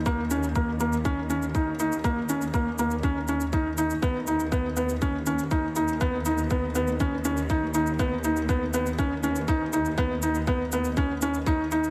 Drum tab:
SH |x-xxx-xxx-xxx-xx|x-xxx-xxx-xxx-xx|x-xxx-xxx-xxx-xx|x-xxx-xxx-xxx-xx|
BD |o---o---o---o---|o---o---o---o---|o---o---o---o---|o---o---o---o---|

SH |x-xxx-xxx-xxx-xx|x-xxx-xxx-xxx-xx|
BD |o---o---o---o---|o---o---o---o---|